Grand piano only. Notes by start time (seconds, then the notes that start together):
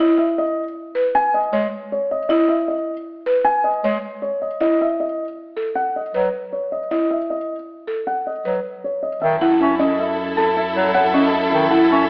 0.00 D#5
0.18 E5
0.38 D#5
1.15 G#5
1.34 D#5
1.92 C#5
2.11 D#5
2.29 D#5
2.49 E5
2.68 D#5
3.45 G#5
3.64 D#5
4.22 C#5
4.42 D#5
4.61 D#5
4.81 E5
5.00 D#5
5.75 F#5
5.96 D#5
6.53 C#5
6.72 D#5
6.91 D#5
7.11 E5
7.30 D#5
8.07 F#5
8.27 D#5
8.84 C#5
9.03 D#5
9.22 E5
9.42 F#5
9.61 E5
9.79 D#5
9.99 E5
10.37 A5
10.57 E5
10.94 F#5
11.14 D#5
11.32 E5
11.51 E5
11.71 F#5
11.91 E5